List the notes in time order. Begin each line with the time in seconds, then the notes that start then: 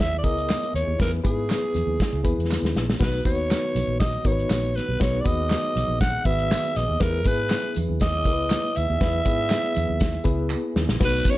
Already playing: D#2 B3 E4 G#4
0.00 E5, snare
0.18 D5
0.24 C#2 B3 E4 G#4 A#4 D#5, kick, closed hi-hat, tambourine
0.38 closed hi-hat
0.49 snare, clap, closed hi-hat, tambourine, high conga
0.63 closed hi-hat
0.74 D#2 C#5, closed hi-hat
0.87 D#2, high conga
0.99 E2 B3 E4 G#4 A#4 B4, kick, snare, closed hi-hat, tambourine, muted conga
1.24 G#2 B3 E4 G#4 B4, kick, closed hi-hat, tambourine, muted conga
1.50 snare, clap, closed hi-hat, tambourine, high conga
1.74 E2, closed hi-hat, tambourine, low conga
1.87 D#2, low conga
2.00 kick, snare, closed hi-hat, tambourine, muted conga, low conga
2.13 C#2
2.24 D#2 B3 E4 G#4 B4, kick, closed hi-hat, tambourine
2.38 E2, closed hi-hat
2.51 snare, clap, tambourine, high conga
2.62 D#2, snare
2.75 A#1, snare, tambourine
2.88 snare, high conga
2.99 B1 D#3 B3 D#4 F#4 B4, kick, snare, tambourine, splash, muted conga
3.25 D#2 B3 D#4 F#4 B4 C#5, kick, closed hi-hat, tambourine, muted conga
3.51 snare, clap, closed hi-hat, tambourine, high conga
3.75 B1, closed hi-hat, tambourine, low conga
3.87 A#1, low conga
4.00 D#5, kick, snare, closed hi-hat, tambourine, muted conga
4.24 G#1 B3 D#4 F#4 A#4 C#5, kick, closed hi-hat, tambourine
4.31 B4
4.39 closed hi-hat
4.50 A#1, snare, clap, closed hi-hat, tambourine, high conga
4.75 B4, snare, closed hi-hat
4.89 B1, high conga
5.00 B1 B3 D#4 F#4 G#4 B4 C#5, kick, snare, closed hi-hat, tambourine
5.21 B3 D#4 D5
5.25 D#2 F#4 B4 D#5, kick, closed hi-hat, tambourine, muted conga
5.50 snare, clap, closed hi-hat, tambourine, high conga
5.76 B1, closed hi-hat, tambourine, low conga
5.87 A#1, low conga
6.00 F#5, kick, snare, closed hi-hat, tambourine, muted conga, low conga
6.25 G#1 D#3 B3 F#4 B4 E5, kick, closed hi-hat, tambourine
6.39 closed hi-hat
6.51 snare, clap, closed hi-hat, tambourine, high conga
6.64 closed hi-hat
6.76 A#1 D#5, snare, closed hi-hat, tambourine
6.89 D#2, high conga
7.00 E2 B3 E4 G#4 A#4 B4, kick, snare, closed hi-hat
7.24 G#2 B3 E4 G#4 B4, kick, closed hi-hat, tambourine, muted conga
7.50 snare, clap, closed hi-hat, tambourine, high conga
7.74 E2, closed hi-hat, tambourine, low conga
7.88 D#2, low conga
8.00 D#5, kick, snare, closed hi-hat, tambourine, muted conga
8.24 C#2 B3 E4 G#4 A#4, kick, closed hi-hat, tambourine
8.32 B4
8.50 snare, clap, closed hi-hat, tambourine, high conga
8.76 D#2 E5, closed hi-hat, tambourine
8.90 D#2, high conga
9.01 E2 B3 E4 G#4 B4, kick, snare, closed hi-hat, tambourine
9.25 G#2 B3 E4 G#4 B4, kick, closed hi-hat, tambourine, muted conga
9.49 snare, clap, closed hi-hat, tambourine, high conga
9.75 E2, closed hi-hat, tambourine, low conga
9.88 D#2, low conga
10.00 kick, snare, closed hi-hat, tambourine, muted conga, low conga
10.24 C#2 B3 E4 G#4 B4, kick, closed hi-hat, tambourine
10.50 clap, tambourine, high conga
10.76 D#2, snare
10.88 A#1, snare, high conga
11.00 B1 F#3 B3 D#4 F#4 B4, kick, snare, crash
11.04 B3 B4
11.24 C#4, kick, closed hi-hat, tambourine, muted conga
11.30 C#5